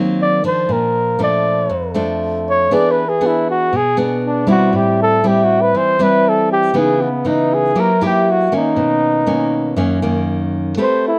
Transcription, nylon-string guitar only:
Already playing: D#3 F#3 A#3 C4
0.44 F3 D4
0.69 A#2
1.19 F3 A3 D4
1.70 F2
1.94 F3 A3 D4
2.71 E3 B3 D4 G#4
3.21 B3 D4 G#4
3.73 B2
3.97 B3 D4 G#4
4.47 G3 C4 E4
4.73 A2
5.24 G3 C4 E4
5.75 E3
5.99 G3 C4 E4
6.74 C#3 E3 B3 D#4
7.25 E3 B3 D#4
7.75 F#3 A#3 E4 G4
8.01 A#3 E4 G4
8.52 D#3 A#3 C#4
8.76 B2
9.27 D#3 A#3 C#4
9.76 F#2 D#3 A#3 C#4
10.02 D#3 A#3 C#4
10.77 A3 C4 G4 B4

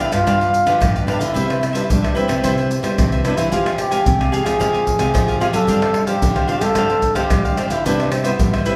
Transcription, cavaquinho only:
0.00 D4 G4 B4 F5
0.12 G4 B4 F5
0.27 D4 G4 B4 F5
0.41 G4 B4 F5
0.53 muted cavaquinho stroke
0.66 G4 B4 F5
0.95 G4 B4 F5
1.07 D4 G4 B4 F5
1.19 G4 B4 F5
1.34 E4 B4 C5 E5
1.48 B4 C5 E5
1.60 muted cavaquinho stroke
1.73 B4 C5 E5
2.02 B4 C5 E5
2.15 E4 B4 C5 E5
2.28 B4 C5 E5
2.44 E4 B4 C5 E5
2.58 B4 C5 E5
2.72 muted cavaquinho stroke
2.83 B4 C5 E5
3.12 B4 C5 E5
3.24 E4 B4 C5 E5
3.37 B4 C5 E5
3.51 G4 G#4 F5 G#5
3.66 G4 F5 G#5
3.79 muted cavaquinho stroke
3.91 G4 F5 G#5
4.20 G4 F5 G#5
4.32 G4 G#4 F5 G#5
4.44 G4 F5 G#5
4.59 G4 G#4 F5 G#5
4.73 G4 F5 G#5
4.87 muted cavaquinho stroke
5.00 G4 F5 G#5
5.28 G4 F5 G#5
5.40 G4 G#4 F5 G#5
5.53 G4 F5 G#5
5.69 D4 G4 C5 F5
5.82 G4 C5 F5
5.94 muted cavaquinho stroke
6.07 G4 C5 F5
6.35 G4 C5 F5
6.48 D4 G4 C5 F5
6.61 G4 C5 F5
6.77 D4 G4 C5 F5
6.90 G4 C5 F5
7.02 muted cavaquinho stroke
7.15 G4 C5 F5
7.45 G4 C5 F5
7.57 D4 G4 C5 F5
7.70 G4 C5 F5
7.86 E4 B4 C5 E5
8.00 B4 C5 E5
8.12 muted cavaquinho stroke
8.24 B4 C5 E5
8.53 B4 C5 E5
8.66 E4 B4 C5 E5

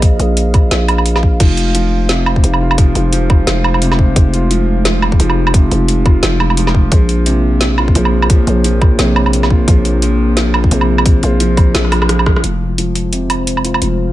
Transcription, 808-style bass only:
Already playing: A#1
0.19 A#1
0.71 A#1
1.40 F1
2.44 F1
2.95 F1
3.47 F1
4.16 F1
5.20 F1
5.71 F1
6.23 F1
6.92 A#1
7.95 A#1
8.47 A#1
8.99 A#1
9.68 A#1
10.71 A#1
11.23 A#1
11.75 A#1
12.44 F1
13.82 F1

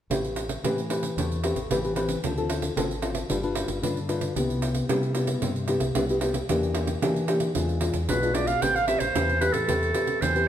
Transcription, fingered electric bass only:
0.10 A1
0.64 A2
1.17 E2
1.55 A1
1.70 A1
2.24 D2
2.77 G#1
3.30 G1
3.68 G1
3.83 G2
4.36 C2
4.89 C3
5.42 G2
5.81 C2
5.96 C2
6.49 E2
7.02 E3
7.56 E2
7.94 E2
8.09 B1
8.62 A1
9.00 A1
9.15 E2
9.53 A2
9.69 E2
10.22 E2

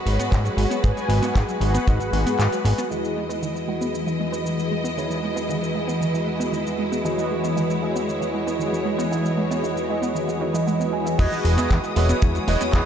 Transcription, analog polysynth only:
Already playing: F#4 G#4 B4 C#5
0.82 F#4 G#4 B4 G#5
1.61 F#4 G#4 B4 F#5
2.90 E3 F#4 G#4 B4 D#5
7.04 E3 F#4 G#4 B4 D#5
11.18 F#4 G#4 B4 D#5
11.95 F#4 G#4 B4 C#5

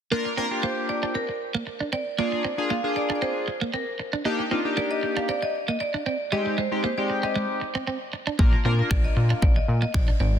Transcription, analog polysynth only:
0.11 A#3 D4 F4 A#4
0.37 A#3 D4 F4 A#4
0.51 A#3 D4 F4 G4
2.18 A#3 D4 F4 G#4
2.58 A#3 D4 F4 G#4
2.84 A#3 D4 F4 G#4
4.25 A#3 D4 D#4 G4
4.51 A#3 D4 D#4 F4
4.65 A#3 D4 D#4 G4
6.32 G#3 C4 D#4 G4
6.71 G#3 C4 D#4 G4
6.97 G#3 C4 D#4 G4
8.39 A#3 D4 F4 A#4
8.65 A#3 D4 F4 A#4
8.78 A#3 D4 F4 A#4

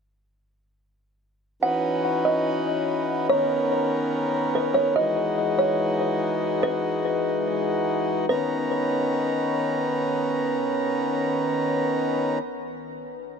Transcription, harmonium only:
1.63 E3 C#4 D#4 F#4 B4
3.30 D#3 B3 C#4 A#4
4.96 E3 G#3 D#4 F#4
8.29 D#3 B3 C#4 A#5

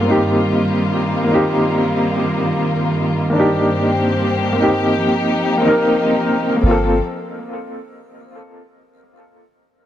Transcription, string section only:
Already playing: G2 F4
0.05 D#3 G3 A#3
3.34 G2 A#3 C4 G4
4.98 F3 A#3 D#4
6.61 F3 A#3 C4 A4

